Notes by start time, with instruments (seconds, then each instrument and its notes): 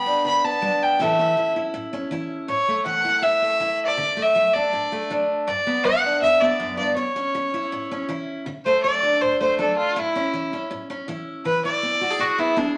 Already playing: steel-string acoustic guitar G3 B3, fiddle B5
0.06 steel-string acoustic guitar D4
0.25 steel-string acoustic guitar D3, fiddle B5
0.44 steel-string acoustic guitar B3, fiddle A5
0.62 steel-string acoustic guitar G3 D4
0.82 fiddle G5
0.99 steel-string acoustic guitar A2 E3 C#4 E4 A4, fiddle E5
1.19 steel-string acoustic guitar C#4
1.37 steel-string acoustic guitar E3
1.56 steel-string acoustic guitar E4
1.74 steel-string acoustic guitar A2
1.93 steel-string acoustic guitar C#4
2.11 steel-string acoustic guitar E3 E4
2.48 steel-string acoustic guitar A2, fiddle C#5
2.68 steel-string acoustic guitar A3
2.86 steel-string acoustic guitar E3, fiddle F#5
3.05 steel-string acoustic guitar E4
3.22 steel-string acoustic guitar A2, fiddle E5
3.42 steel-string acoustic guitar A3
3.60 steel-string acoustic guitar E3 E4
3.85 fiddle D5
3.97 steel-string acoustic guitar D3
4.17 steel-string acoustic guitar A3
4.22 fiddle E5
4.35 steel-string acoustic guitar F#3
4.53 steel-string acoustic guitar D4, fiddle D5
4.73 steel-string acoustic guitar A2
4.92 steel-string acoustic guitar A3
5.10 steel-string acoustic guitar F#3 D4
5.48 steel-string acoustic guitar G2, fiddle D5
5.67 steel-string acoustic guitar B3
5.84 steel-string acoustic guitar G3, fiddle F#5
6.04 steel-string acoustic guitar D4
6.22 steel-string acoustic guitar D3, fiddle E5
6.41 steel-string acoustic guitar B3, fiddle D5
6.60 steel-string acoustic guitar F#2
6.77 steel-string acoustic guitar G2, fiddle D5
6.96 steel-string acoustic guitar A2, fiddle C#5
7.16 steel-string acoustic guitar C#4
7.35 steel-string acoustic guitar E3
7.54 steel-string acoustic guitar E4
7.72 steel-string acoustic guitar A2
7.91 steel-string acoustic guitar C#4
8.09 steel-string acoustic guitar E3 E4
8.46 steel-string acoustic guitar D3
8.65 steel-string acoustic guitar A3, fiddle C5
8.83 steel-string acoustic guitar F#3, fiddle D5
9.03 steel-string acoustic guitar D4
9.21 steel-string acoustic guitar A2, fiddle C5
9.40 steel-string acoustic guitar A3, fiddle C5
9.59 steel-string acoustic guitar F#3 D4, fiddle A4
9.78 fiddle F4
9.96 steel-string acoustic guitar A2, fiddle E4
10.16 steel-string acoustic guitar C#4
10.33 steel-string acoustic guitar E3
10.53 steel-string acoustic guitar C#4
10.71 steel-string acoustic guitar A2
10.90 steel-string acoustic guitar C#4
11.08 steel-string acoustic guitar E3 E4
11.45 steel-string acoustic guitar E3, fiddle B4
11.65 steel-string acoustic guitar E4, fiddle D5
11.83 steel-string acoustic guitar B3
12.01 steel-string acoustic guitar F#4
12.10 steel-string acoustic guitar G#4
12.19 steel-string acoustic guitar B2, fiddle F#4
12.38 steel-string acoustic guitar B3, fiddle E4
12.57 steel-string acoustic guitar B3 G#4, fiddle D4